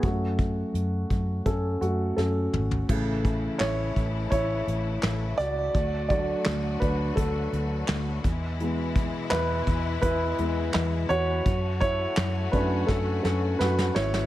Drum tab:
CC |----------------|x---------------|----------------|----------------|
HH |x-x-x-x-x-x-----|--x-x-x-x-x-x-x-|x-x-x-x-x-x-x-x-|x-x-x-x-x-x-x-x-|
CP |----------------|----x-------x---|----x-------x---|----x-------x---|
SD |------------o---|----o-------o-o-|----o-------o---|----o-------o---|
T2 |--------------o-|----------------|----------------|----------------|
FT |---------------o|----------------|----------------|----------------|
BD |o-o---o-o-------|o-o---o-o-------|o-o---o-o-----o-|--o---o-o-------|

CC |----------------|
HH |x-x-x-x---------|
CP |----x-----------|
SD |----o---o-o-oooo|
T2 |----------------|
FT |----------------|
BD |o-o---o-o-------|